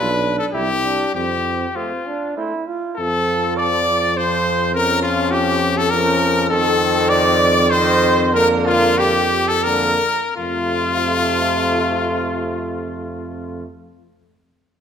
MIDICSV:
0, 0, Header, 1, 6, 480
1, 0, Start_track
1, 0, Key_signature, -1, "major"
1, 0, Tempo, 608519
1, 908, Time_signature, 3, 2, 24, 8
1, 2351, Tempo, 587084
1, 5231, Tempo, 610376
1, 6671, Tempo, 663717
1, 7631, Tempo, 712589
1, 11095, End_track
2, 0, Start_track
2, 0, Title_t, "Flugelhorn"
2, 0, Program_c, 0, 56
2, 425, Note_on_c, 0, 64, 71
2, 552, Note_off_c, 0, 64, 0
2, 1375, Note_on_c, 0, 60, 76
2, 1502, Note_off_c, 0, 60, 0
2, 1864, Note_on_c, 0, 60, 65
2, 1990, Note_off_c, 0, 60, 0
2, 2337, Note_on_c, 0, 69, 102
2, 2835, Note_on_c, 0, 74, 116
2, 2847, Note_off_c, 0, 69, 0
2, 3314, Note_off_c, 0, 74, 0
2, 3319, Note_on_c, 0, 72, 99
2, 3787, Note_off_c, 0, 72, 0
2, 3795, Note_on_c, 0, 70, 107
2, 4026, Note_off_c, 0, 70, 0
2, 4030, Note_on_c, 0, 65, 105
2, 4273, Note_on_c, 0, 67, 122
2, 4285, Note_off_c, 0, 65, 0
2, 4621, Note_off_c, 0, 67, 0
2, 4626, Note_on_c, 0, 69, 99
2, 4745, Note_off_c, 0, 69, 0
2, 4750, Note_on_c, 0, 70, 118
2, 5220, Note_off_c, 0, 70, 0
2, 5232, Note_on_c, 0, 69, 116
2, 5695, Note_on_c, 0, 74, 127
2, 5707, Note_off_c, 0, 69, 0
2, 6181, Note_on_c, 0, 72, 118
2, 6193, Note_off_c, 0, 74, 0
2, 6672, Note_off_c, 0, 72, 0
2, 6678, Note_on_c, 0, 70, 127
2, 6909, Note_on_c, 0, 65, 115
2, 6920, Note_off_c, 0, 70, 0
2, 7148, Note_on_c, 0, 67, 127
2, 7159, Note_off_c, 0, 65, 0
2, 7515, Note_on_c, 0, 69, 109
2, 7526, Note_off_c, 0, 67, 0
2, 7639, Note_on_c, 0, 70, 109
2, 7649, Note_off_c, 0, 69, 0
2, 8012, Note_off_c, 0, 70, 0
2, 8126, Note_on_c, 0, 65, 103
2, 10327, Note_off_c, 0, 65, 0
2, 11095, End_track
3, 0, Start_track
3, 0, Title_t, "Trumpet"
3, 0, Program_c, 1, 56
3, 0, Note_on_c, 1, 71, 127
3, 298, Note_off_c, 1, 71, 0
3, 303, Note_on_c, 1, 69, 107
3, 357, Note_off_c, 1, 69, 0
3, 415, Note_on_c, 1, 67, 127
3, 893, Note_off_c, 1, 67, 0
3, 904, Note_on_c, 1, 67, 111
3, 1385, Note_on_c, 1, 65, 89
3, 1397, Note_off_c, 1, 67, 0
3, 1870, Note_off_c, 1, 65, 0
3, 2336, Note_on_c, 1, 69, 126
3, 2800, Note_off_c, 1, 69, 0
3, 2833, Note_on_c, 1, 74, 123
3, 3325, Note_on_c, 1, 72, 123
3, 3337, Note_off_c, 1, 74, 0
3, 3783, Note_off_c, 1, 72, 0
3, 3788, Note_on_c, 1, 70, 125
3, 4016, Note_off_c, 1, 70, 0
3, 4021, Note_on_c, 1, 65, 112
3, 4259, Note_on_c, 1, 67, 127
3, 4271, Note_off_c, 1, 65, 0
3, 4636, Note_on_c, 1, 69, 124
3, 4648, Note_off_c, 1, 67, 0
3, 4739, Note_on_c, 1, 70, 127
3, 4752, Note_off_c, 1, 69, 0
3, 5216, Note_off_c, 1, 70, 0
3, 5221, Note_on_c, 1, 69, 127
3, 5698, Note_on_c, 1, 74, 127
3, 5709, Note_off_c, 1, 69, 0
3, 6172, Note_on_c, 1, 72, 127
3, 6184, Note_off_c, 1, 74, 0
3, 6667, Note_off_c, 1, 72, 0
3, 6673, Note_on_c, 1, 70, 127
3, 6777, Note_off_c, 1, 70, 0
3, 6907, Note_on_c, 1, 65, 127
3, 7138, Note_on_c, 1, 67, 127
3, 7149, Note_off_c, 1, 65, 0
3, 7498, Note_on_c, 1, 69, 127
3, 7509, Note_off_c, 1, 67, 0
3, 7613, Note_on_c, 1, 70, 127
3, 7624, Note_off_c, 1, 69, 0
3, 8098, Note_off_c, 1, 70, 0
3, 8102, Note_on_c, 1, 65, 123
3, 10302, Note_off_c, 1, 65, 0
3, 11095, End_track
4, 0, Start_track
4, 0, Title_t, "French horn"
4, 0, Program_c, 2, 60
4, 418, Note_on_c, 2, 55, 77
4, 544, Note_off_c, 2, 55, 0
4, 1388, Note_on_c, 2, 57, 69
4, 1514, Note_off_c, 2, 57, 0
4, 1869, Note_on_c, 2, 57, 74
4, 1996, Note_off_c, 2, 57, 0
4, 2353, Note_on_c, 2, 60, 86
4, 3291, Note_off_c, 2, 60, 0
4, 3326, Note_on_c, 2, 60, 86
4, 3800, Note_on_c, 2, 61, 93
4, 3812, Note_off_c, 2, 60, 0
4, 4751, Note_off_c, 2, 61, 0
4, 4760, Note_on_c, 2, 61, 104
4, 5225, Note_off_c, 2, 61, 0
4, 5234, Note_on_c, 2, 60, 109
4, 6160, Note_off_c, 2, 60, 0
4, 6184, Note_on_c, 2, 60, 106
4, 6677, Note_on_c, 2, 58, 117
4, 6688, Note_off_c, 2, 60, 0
4, 7398, Note_off_c, 2, 58, 0
4, 7634, Note_on_c, 2, 58, 93
4, 7858, Note_off_c, 2, 58, 0
4, 8127, Note_on_c, 2, 57, 99
4, 10327, Note_off_c, 2, 57, 0
4, 11095, End_track
5, 0, Start_track
5, 0, Title_t, "Trombone"
5, 0, Program_c, 3, 57
5, 0, Note_on_c, 3, 62, 98
5, 420, Note_off_c, 3, 62, 0
5, 428, Note_on_c, 3, 64, 97
5, 535, Note_off_c, 3, 64, 0
5, 667, Note_on_c, 3, 62, 91
5, 902, Note_off_c, 3, 62, 0
5, 906, Note_on_c, 3, 60, 88
5, 1331, Note_off_c, 3, 60, 0
5, 1389, Note_on_c, 3, 60, 86
5, 1630, Note_on_c, 3, 62, 94
5, 1642, Note_off_c, 3, 60, 0
5, 1863, Note_off_c, 3, 62, 0
5, 1867, Note_on_c, 3, 64, 108
5, 2107, Note_on_c, 3, 65, 93
5, 2119, Note_off_c, 3, 64, 0
5, 2347, Note_off_c, 3, 65, 0
5, 2356, Note_on_c, 3, 53, 96
5, 3293, Note_off_c, 3, 53, 0
5, 3330, Note_on_c, 3, 53, 96
5, 3792, Note_off_c, 3, 53, 0
5, 3801, Note_on_c, 3, 53, 96
5, 4732, Note_off_c, 3, 53, 0
5, 4750, Note_on_c, 3, 53, 104
5, 5229, Note_on_c, 3, 51, 110
5, 5241, Note_off_c, 3, 53, 0
5, 6174, Note_off_c, 3, 51, 0
5, 6178, Note_on_c, 3, 51, 126
5, 6667, Note_on_c, 3, 50, 109
5, 6678, Note_off_c, 3, 51, 0
5, 7393, Note_off_c, 3, 50, 0
5, 7627, Note_on_c, 3, 50, 110
5, 7854, Note_off_c, 3, 50, 0
5, 8115, Note_on_c, 3, 48, 96
5, 10315, Note_off_c, 3, 48, 0
5, 11095, End_track
6, 0, Start_track
6, 0, Title_t, "Tuba"
6, 0, Program_c, 4, 58
6, 0, Note_on_c, 4, 35, 106
6, 345, Note_off_c, 4, 35, 0
6, 421, Note_on_c, 4, 36, 102
6, 825, Note_off_c, 4, 36, 0
6, 904, Note_on_c, 4, 41, 96
6, 1307, Note_off_c, 4, 41, 0
6, 2349, Note_on_c, 4, 41, 97
6, 5197, Note_off_c, 4, 41, 0
6, 5236, Note_on_c, 4, 41, 120
6, 7848, Note_off_c, 4, 41, 0
6, 8118, Note_on_c, 4, 41, 101
6, 10318, Note_off_c, 4, 41, 0
6, 11095, End_track
0, 0, End_of_file